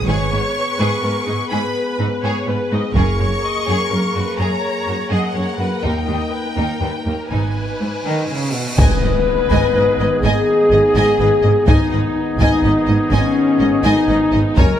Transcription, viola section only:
0.07 C#5
0.79 B4
1.03 A#4
1.26 G#4
1.51 B4
2.23 C#5
2.48 B4
2.72 D#5
2.96 A#4
3.20 C#5
3.44 D#5
3.68 C#5
3.91 A#4
4.15 B4
4.40 C#5
5.11 D#5
5.35 C#5
5.60 B4
5.84 A#4
6.08 D#5
6.32 B4
6.56 A#4
6.80 B4
7.06 A#4
7.30 B4
8.78 B4
10.23 G#4
11.68 D#4
12.40 D#4
13.12 C#4
13.84 D#4
14.57 A#4

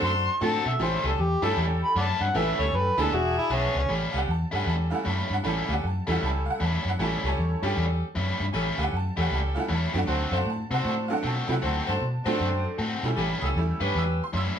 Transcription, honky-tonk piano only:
0.41 A3 C4 D4 F#4 A4
0.79 A3 C#4 E4 G4 A4
1.42 A3 C#4 E4 G4 A4
2.35 A3 C#4 E4 G4 A4
2.98 G#3 B3 D4 E4 G#4
4.13 F5
4.18 F#5
4.31 A5
4.55 F#5
4.69 A5
4.90 G3 A3 C#4 E4 F5
4.94 F#5
5.09 A5
5.34 F#5
5.44 G3 A3 C#4 E4
5.49 A5
5.73 F#5
5.87 A5
6.07 G3 A3 C#4 E4
6.12 F#5
6.26 A5
6.50 F#5
6.64 A5
6.89 F#5
7.00 G3 A3 C#4 E4 A5
7.26 C#5 A5
7.63 G3 A3 C#4 G4
8.83 F#5
8.97 A5
9.21 F#5
9.35 A5
9.55 G3 A3 C#4 E4 F5
9.60 F#5
9.74 A5
9.94 F#3 A3 C4 D4
9.98 F#5
10.12 A5
10.32 F5
10.36 F#5
10.50 A5
10.74 F#5
10.88 A5
11.08 F#3 A3 C4 D4 F5
11.13 F#5
11.27 A5
11.48 F#3 A3 C4 E4
11.52 F#5
11.66 A5
11.90 A5
12.26 F#3 A3 C4 D4
13.04 G3 A3 C#4 E4
13.46 E6
13.57 G3 A3 C#4 E4
13.99 E6
14.24 C6
14.37 E6

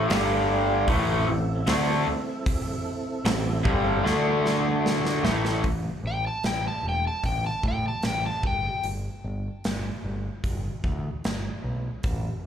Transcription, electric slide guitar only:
6.07 G5
6.27 A5
6.46 G5
6.68 A5
6.89 G5
7.07 A5
7.26 G5
7.47 A5
7.68 G5
7.88 A5
8.06 G5
8.26 A5
8.47 G5

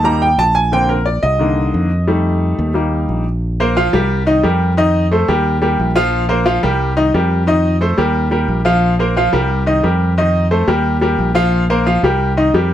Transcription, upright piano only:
0.04 G3 A#3 D#4 A#5
0.22 G5
0.39 A5
0.55 G#5
0.72 D3 A#3 C4 G5
0.89 A#4
1.06 D5
1.23 D#5
1.39 D3 D#3 A#3
2.07 G3 A3 D#4
2.74 G3 A#3 D#4
3.60 A#3 A#4 C5
3.76 F3 F4 F5
3.93 G3 G4 A#4
4.26 D#3 D#4 D#5
4.43 G3 G4 A#4
4.77 D#3 D#4 D#5
5.11 A3 A4 C5
5.28 G3 G4 A#4
5.62 G3 G4 A#4
5.96 F3 F4 F5
6.29 A#3 A#4 C5
6.45 F3 F4 F5
6.63 G3 G4 A#4
6.97 D#3 D#4 D#5
7.14 G3 G4 A#4
7.47 D#3 D#4 D#5
7.81 A3 A4 C5
7.98 G3 G4 A#4
8.31 G3 G4 A#4
8.65 F3 F4 F5
8.99 A#3 A#4 C5
9.16 F3 F4 F5
9.33 G3 G4 A#4
9.66 D#3 D#4 D#5
9.83 G3 G4 A#4
10.18 D#3 D#4 D#5
10.51 A3 A4 C5
10.68 G3 G4 A#4
11.01 G3 G4 A#4
11.35 F3 F4 F5
11.70 A#3 A#4 C5
11.86 F3 F4 F5
12.04 G3 G4 A#4
12.37 D#3 D#4 D#5
12.54 G3 G4 A#4

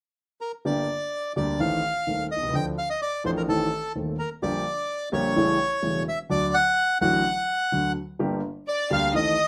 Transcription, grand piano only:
0.65 G1 G2 D3 G3 A#3 G4
1.36 D2 D3 G3 A#3 G4
1.59 A1 A2 D#3 A3 C4 A4
2.07 D#1 D#2 D#3 A3 C4 A4
2.36 B1
2.43 C2
2.48 C#2
2.53 D2 D3 F3 C4 D4 A4
3.24 A1 A2 F3 C4 D4 A4
3.48 A1 A2 D#3 A3 C4 A4
3.95 D#1 D#2 D#3 A3 C4 A4
4.42 A#1 A#2 D3 G3 A#3 G4
5.12 A#1 A#2 D3 G3 A#3 G4
5.36 A1 A2 C#3 G3 A3 E4
5.82 E1 E2 C#3 G3 A3 E4
6.29 D2 D3 F#3 A3 F#4
7.01 A1 A2 D3 F#3 A3 F#4
7.72 D2 D3 F#3 A3 F#4
8.19 G1 G2 D3 G3 A#3 G4
8.90 D2 D3 G3 A#3 G4
9.13 A1 A2 D#3 A3 C4 A4

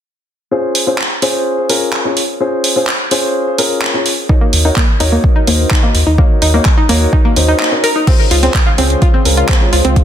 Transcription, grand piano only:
0.51 C#4 F4 G#4 C5
0.87 C#4 F4 G#4 C5
1.22 C#4 F4 G#4 C5
1.70 C#4 F4 G#4 A#4
2.05 C#4 F4 G#4 C#5
2.40 C#4 F4 G#4 C5
2.76 C#4 F4 G#4 C5
3.11 C#4 F4 G#4 C5
3.59 C#4 F4 G#4 A#4
3.94 C#4 F4 G#4 C#5
4.29 D#4 F#4 A#4 C#5
4.65 D#4 F#4 A#4 C#5
5.00 D#4 F#4 A#4 C#5
5.47 D#4 F#4 A#4 C5
5.83 D#4 F#4 A#4 D#5
6.18 D#4 F#4 A#4 C#5
6.54 D#4 F#4 A#4 C#5
6.89 D#4 F#4 A#4 C#5
7.36 D#4 F#4 A#4 C5
7.72 D#4 F#4 A#4 D#5
8.07 C#4 F4 G#4 C5
8.43 C#4 F4 G#4 C5
8.78 C#4 F4 G#4 C5
9.25 C#4 F4 G#4 A#4
9.61 C#4 F4 G#4 C#5
9.96 C#4 F4 G#4 C5

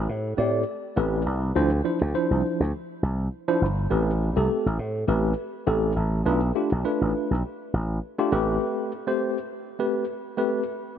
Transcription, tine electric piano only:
0.37 A3 C4 G4 D5
0.96 A3 C4 G4 B4
1.55 F3 D4 E4 C5
1.84 F3 D4 E4 C5
2.14 F3 D4 E4 C5
3.48 F3 D4 E4 C5
3.90 A3 C4 G4 B4
4.36 A3 C4 G4 A4
5.07 A3 C4 G4 B4
5.67 A3 C4 G4 A4
6.25 A3 D4 F4 B4
6.55 A3 D4 F4 G4
6.84 A3 D4 F4 B4
8.18 A3 D4 F4 G4
8.32 A3 C4 G4 B4
9.07 A3 C4 G4 C5
9.79 A3 C4 G4 B4
10.37 A3 C4 G4 B4

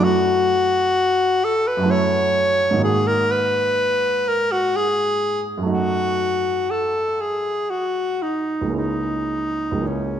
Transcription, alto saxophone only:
0.04 F#4
1.44 A4
1.67 B4
1.91 C#5
2.83 G#4
3.07 A#4
3.31 B4
4.28 A#4
4.52 F#4
4.76 G#4
5.71 F#4
6.71 A4
7.21 G#4
7.70 F#4
8.22 D#4
8.76 D#4
9.87 C#4

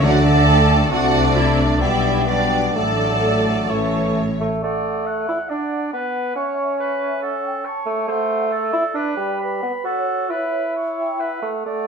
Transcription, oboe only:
0.03 D5
0.92 D5
1.80 D5
2.28 D5
2.75 D5
3.69 C#5
4.63 D5
5.06 F#5
5.49 D5
5.93 B4
6.35 C#5
6.80 B4
7.22 A4
7.65 C#5
8.09 C5
8.52 A4
8.96 B4
9.40 B5
9.84 A4
10.31 B4
10.76 C#5
11.20 B4
11.66 D5

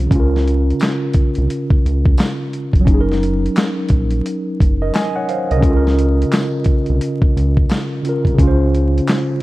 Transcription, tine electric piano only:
Already playing: C5
0.07 C#3
0.11 C#4
0.15 F4
0.20 A#4
2.81 F#3
2.85 C#4
2.90 D#4
2.94 G#4
3.01 A#4
4.82 A#4 D#5
4.95 D#5 G#5
5.16 C#5 F#5
5.29 C5 F5
5.52 A#4 D#5
5.56 C#3
5.61 C#4
5.66 F4
5.70 A4
5.76 A#4
8.02 C#3 C#4
8.06 F4 A#4
8.34 C#3
8.39 C#4 F4
8.47 C5

